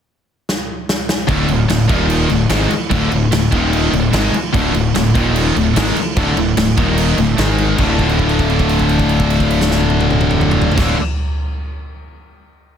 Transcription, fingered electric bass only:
1.29 D1
1.48 D1
1.70 D1
1.89 D#1
2.31 D1
2.50 G#1
2.71 muted fingered electric bass stroke
2.91 D1
3.12 D1
3.31 D1
3.52 D#1
3.93 D1
4.13 G#1
4.34 muted fingered electric bass stroke
4.54 D1
4.74 D1
4.95 D1
5.15 D#1
5.56 D1
5.76 G#1
5.97 muted fingered electric bass stroke
6.17 D1
6.36 D1
6.57 D1
6.78 D#1
7.17 D1
7.38 G#1
7.79 D1
10.78 D1

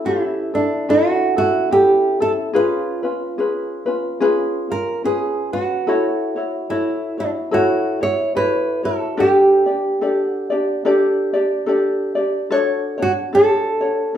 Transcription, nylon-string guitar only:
0.06 F4
0.24 E4
0.55 D4
0.90 F#4
1.38 F#4
1.73 G4
2.22 A4
2.56 F4
4.72 A#4
5.05 G#4
5.53 F#4
6.70 E4
7.20 D4
7.54 F#4
8.03 C#5
8.37 B4
8.85 A4
9.20 G4
10.23 F#4
13.02 F#4
13.35 A4

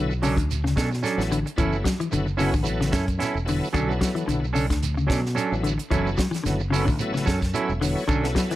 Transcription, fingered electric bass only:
Already playing: B1
0.37 D2
0.77 B2
1.18 A1
1.59 F#1
2.13 F#1
2.54 A1
2.93 F#2
3.35 E1
3.75 B1
4.28 B1
4.70 D2
5.10 B2
5.52 A1
5.92 F#1
6.46 F#1
6.89 A1
7.27 F#2
7.69 E1
8.08 B1

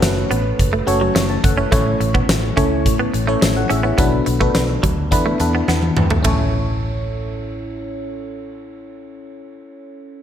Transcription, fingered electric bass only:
0.02 F#1
0.31 A1
0.60 F#1
0.88 F#1
1.16 F#1
1.44 F#1
1.72 A1
2.00 A1
2.29 A1
2.58 C#2
2.86 A1
3.14 A1
3.42 A1
3.71 A1
3.98 B1
4.27 B1
4.55 B1
4.84 D2
5.12 E2
5.40 E2
5.68 E2
5.97 E2
6.25 A1

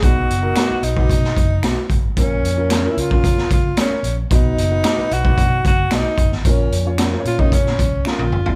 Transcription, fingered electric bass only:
0.02 B1
0.29 F#1
0.70 muted fingered electric bass stroke
0.82 B1
1.10 B2
1.37 F#1
1.62 B1
1.90 F#1
2.03 G#1
2.17 A#1
2.43 F2
2.97 C#2
3.50 C#2
3.90 muted fingered electric bass stroke
4.03 A#1
4.31 B1
4.58 F#1
4.98 muted fingered electric bass stroke
5.11 B1
5.38 B2
5.65 F#1
5.92 B1
6.18 F#1
6.32 G#1
6.45 A#1
6.72 F2
7.25 A#2
7.65 A#2
7.80 A#1
7.92 C2
8.19 A#1
8.32 F#1
8.46 G#1

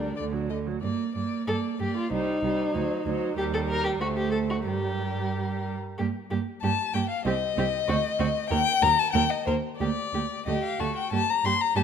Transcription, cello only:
0.17 D2
0.83 G2
1.16 G2
1.48 G2
1.80 G2
2.11 C2
2.43 C2
2.75 D2
3.06 D2
3.37 D#2
4.00 D2
4.65 G2
6.00 G2
6.31 G2
6.63 G2
6.94 G2
7.26 C2
7.57 C2
7.89 D2
8.20 D2
8.51 D#2
8.83 D#2
9.14 D#2
9.48 D#2
9.81 D2
10.13 D2
10.47 D2
10.80 D2
11.12 G2
11.44 G2
11.76 G2

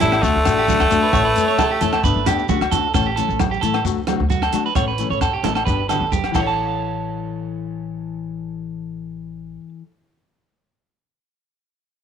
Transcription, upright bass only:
0.01 A1
0.23 D2
0.36 D2
0.46 A1
0.81 D2
0.91 D2
1.13 A1
1.81 D2
2.04 G1
2.16 G1
2.26 D2
2.49 D2
2.61 D2
2.72 D2
2.94 A1
3.29 A1
3.62 A2
3.85 D2
4.20 D2
4.53 D3
4.76 A1
5.10 A1
5.43 A1
5.67 G1
6.00 G1
6.35 A1

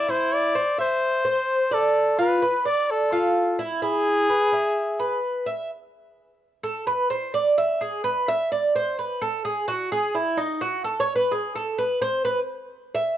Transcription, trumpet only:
Already playing: D5
0.10 C5
0.33 D5
0.81 C5
1.74 A4
2.21 B4
2.67 D5
2.91 A4
3.84 G#4

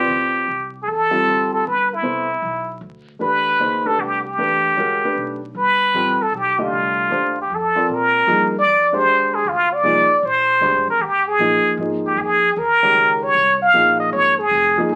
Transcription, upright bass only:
0.08 D2
0.48 C2
0.87 E2
1.26 D2
1.65 G1
2.03 C2
2.42 B1
2.81 D2
3.20 E2
3.58 D2
3.98 C2
4.38 E2
4.77 D2
5.16 B1
5.54 G1
5.94 A1
6.20 muted upright bass stroke
6.32 B1
6.73 C2
7.11 D#2
7.50 F2
7.89 A#2
8.28 G2
8.67 F2
9.05 D#2
9.44 D2
9.83 C2
10.09 muted upright bass stroke
10.23 A#1
10.61 D2
10.74 A#1
10.88 G#1
10.99 D#2
11.38 A#2
11.64 muted upright bass stroke
11.77 G#2
12.16 F2
12.56 D#2
12.95 C#2
13.35 C2
13.74 A#1
14.13 G#1
14.51 F1
14.89 G#1

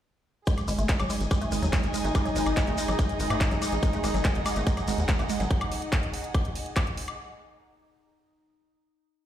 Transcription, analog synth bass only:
0.68 G#1
0.79 G#1
1.00 G#1
1.21 G#1
1.52 G#1
1.62 D#2
1.83 G#1
2.04 G#1
2.36 G#1
2.46 G#1
2.67 G#1
2.88 G#1
3.20 G#1
3.30 G#2
3.51 A1
3.72 A1
4.04 G#1
4.14 G#1
4.35 G#1
4.56 G#1
4.88 G#1
4.98 D#2
5.19 G#1
5.40 G#1

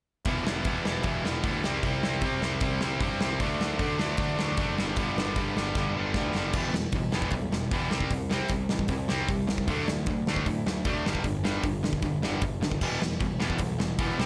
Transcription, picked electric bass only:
0.25 E1
0.65 E2
0.86 E1
1.04 E1
1.25 E1
1.44 D2
1.64 C2
1.83 C2
2.21 C3
2.41 C2
2.61 C2
2.82 C2
3.01 G2
3.21 C2
3.40 D2
3.80 D3
4.00 D2
4.18 D2
4.38 D2
4.58 F#1
4.79 G1
4.96 G1
5.37 G2
5.57 G1
5.75 G1
5.95 G1
6.15 D2
6.34 F#1
6.54 E1
6.72 E1
6.93 E1
7.12 E1
7.31 B1
7.51 E1
7.71 E1
7.90 C2
8.11 C2
8.50 C2
8.70 A1
8.89 C2
9.10 C2
9.29 C2
9.50 C2
9.68 D2
9.89 D2
10.07 D2
10.29 D2
10.46 A2
10.66 D2
10.85 D2
11.05 G1
11.24 G1
11.64 G1
11.84 E1
12.03 G1
12.23 G1
12.42 G1
12.60 F#1
12.81 E1
13.02 E1
13.21 E1
13.41 E1
13.60 B1
13.80 E1
13.98 E1
14.20 C2

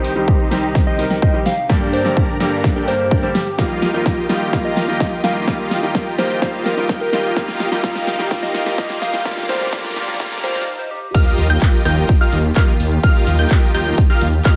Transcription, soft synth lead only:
0.87 D#5
1.11 D#5
1.46 F5
1.93 C5
2.88 C5
3.23 C5
3.35 G4
4.65 D#5
4.89 D#5
5.24 F5
6.18 C5
6.42 C5
6.54 C5
6.66 A#4
7.01 A#4
8.43 D#5
8.66 D#5
9.02 F5
9.49 C5
10.43 C5
10.79 C5
10.91 G4

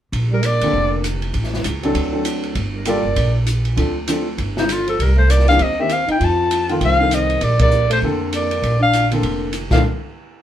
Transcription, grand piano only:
0.63 D3 A#3 C4 A4
1.83 F#3 C4 D4 A4
2.12 F#3 C4 D4 A4
2.86 G3 A#3 F4 A4
3.76 F3 C4 D4 A4
4.08 F3 C4 D4 A4
5.48 D#3 A#3 C4 G4
5.79 D#3 A#3 C4 G4
6.69 D#3 A3 C4 F4
6.99 D#3 A3 C4 D#4
8.03 D3 A#3 C4 A4
9.11 D3 A#3 C4 A4
9.72 D3 A#3 C4 A4

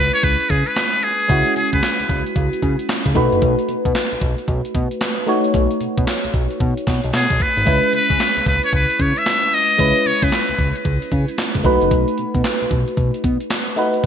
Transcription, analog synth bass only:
Already playing: C#2
0.23 C#2
0.50 C#3
1.30 C#2
1.56 C#3
1.73 C#3
2.00 C#2
2.09 C#2
2.36 C#2
2.63 C#3
3.06 C#2
3.16 B1
3.33 F#1
3.42 B1
3.69 B2
3.85 B2
4.12 B1
4.22 B1
4.48 B1
4.75 B2
5.54 B1
5.81 B2
5.98 B2
6.24 B1
6.34 B1
6.61 B2
6.87 B2
7.04 B1
7.14 B2
7.30 B1
7.57 G#1
7.67 C#2
7.93 C#3
8.10 C#3
8.37 C#2
8.46 C#2
8.73 C#2
9.00 C#3
9.79 C#2
10.06 C#3
10.23 C#3
10.49 C#2
10.59 C#2
10.85 C#2
11.12 C#3
11.55 C#2
11.65 B1
11.82 F#1
11.91 B1
12.19 B2
12.35 B2
12.62 B1
12.71 B1
12.98 B1
13.24 B2

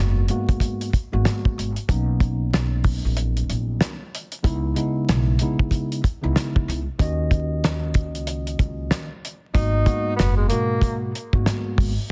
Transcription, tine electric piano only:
Already playing: G#2 G#3 A#3 B3 F#4
0.29 G#2 G#3 A#3 B3 F#4
1.12 G#2 G#3 A#3 B3 F#4
1.88 F#3 A#3 B3 C#4 D#4
4.43 C#3 G#3 B3 D#4 E4
4.75 C#3 G#3 B3 D#4 E4
5.41 C#3 G#3 B3 D#4 E4
6.22 C#3 G#3 B3 D#4 E4
6.98 D#3 A#3 C#4 F#4 D#5
9.54 G#2 G#3 A#3 B3 F#4
9.85 G#2 G#3 A#3 B3 F#4
10.51 G#2 B2 G#3 A#3 F#4
11.33 G#2 G#3 A#3 B3 F#4

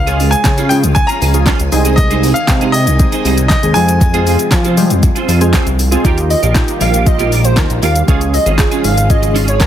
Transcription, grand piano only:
Already playing: F5
0.31 G#5
0.69 G5
0.95 G#5
1.07 A#5
1.96 D#5
2.34 F5
2.72 D#5
3.48 D#5
3.74 G#5

